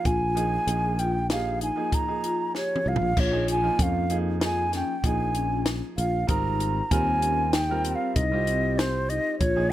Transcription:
0.05 A#1 F4 G#5, kick, closed hi-hat
0.35 F3 A#3 D#4 G#4, closed hi-hat
0.67 A#1 F3 A#3 D#4 G#4, closed hi-hat
0.99 F4 G5, closed hi-hat
1.29 F3 A#3 D#4 G4 G#4 F5, snare, closed hi-hat
1.61 D#4 G#5, closed hi-hat
1.75 F3 A#3 D#4 G#4
1.92 A#5, kick, closed hi-hat
2.07 F3 A#3 D#4 G#4
2.24 F4, closed hi-hat
2.55 G4 C#5, snare
2.76 mid tom
2.86 C2 F4 F5
2.96 floor tom
3.01 A#1
3.17 A#1 F4 C#5, kick, crash
3.31 F3 A#3 D#4 G#4
3.48 G#5, closed hi-hat
3.62 F3 A#3 D#4 F4
3.79 F2 C#4 F5, kick, closed hi-hat
4.10 F3 A#3 D#4 G#4, closed hi-hat
4.40 F3 A#3 D#4 F4 G#4, snare, closed hi-hat
4.44 G#5
4.73 C#4 G5, snare, closed hi-hat
5.03 A#1 F3 A#3 D#4 G#4 G#5, kick, closed hi-hat
5.35 C#4, closed hi-hat
5.66 snare, closed hi-hat
5.98 A#1 F4 F5, closed hi-hat
6.27 G#1 G3 C4 D#4 F4 A#4 A#5, kick, closed hi-hat
6.60 closed hi-hat
6.91 D#2 G3 C4 F4 A#4 G#5, kick, closed hi-hat
7.22 C#4, closed hi-hat
7.53 D#4 G5, snare, closed hi-hat
7.69 G3 C4 F4 A#4
7.85 C4, closed hi-hat
7.95 F5
8.16 C2 D#4 D#5, kick, closed hi-hat
8.31 G3 C4 F4 G4
8.47 C4, closed hi-hat
8.78 C5, snare, closed hi-hat
9.09 D#4 D#5, closed hi-hat
9.39 A#1 F4 C#5, kick, closed hi-hat
9.56 F3 A#3 D#4 G#4

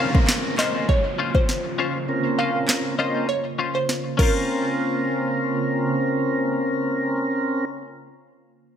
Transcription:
Already playing: C#3 A#3 C4 C#4 F4 A#4 C5, downlifter
0.00 C#4 F4 C5 F5
0.14 C4 C#4 A#4, kick
0.28 snare, clap
0.58 C4 C#4 F4 A#4 C5 D#5, snare, clap
0.74 C#4 F4 C5
0.89 C#5, kick
1.19 C#4 F4 C5
1.35 C5, muted clean electric guitar stroke, kick
1.49 snare
1.79 C#4 F4 C5
2.08 C4 C#4 A#4
2.39 C#4 F4 C5 F5
2.55 C4 C#4 A#4
2.68 snare, clap
2.99 C4 C#4 F4 A#4 C5 D#5
3.15 C#4 F4 C5
3.29 C#5
3.59 C#4 F4 C5
3.75 C5
3.89 snare
4.17 C#3 A#3 C4 C#4 F4 A#4 C5, kick, crash
4.22 C5

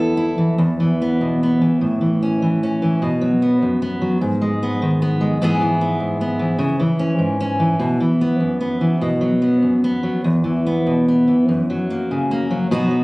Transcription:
Already playing: E2 E3 B3 E4 A4
0.17 E4
0.38 E3
0.58 E2
0.80 E3
1.02 B3
1.21 B2
1.43 B3
1.62 E3
1.81 A2
2.01 E3
2.23 C#4
2.42 E3
2.63 C#4
2.82 E3
3.02 B2
3.21 F#3
3.42 B3
3.62 F#2
3.82 B3
4.02 F#3
4.21 G#2
4.42 G#3
4.63 B3
4.82 D#3
5.02 B3
5.21 G#3
5.42 G#2 E3 B3 E4 G#4
5.61 E3
5.81 B3
6.00 G#2
6.21 B3
6.39 E3
6.59 C#3
6.80 E3
6.99 C#4
7.19 G#2
7.40 C#4
7.60 E3
7.79 B2
8.00 E3
8.21 B3
8.40 F#2
8.61 B3
8.81 E3
9.01 B2
9.21 F#3
9.42 B3
9.62 F#2
9.84 B3
10.03 F#3
10.24 E2
10.44 E3
10.67 B3
10.87 B2
11.08 B3
11.28 E3
11.49 F#2
11.70 F#3
11.90 A#3
12.11 C#3
12.31 A#3
12.51 F#3
12.71 B2 F#3 B3 D#4 F#4
12.91 F#3

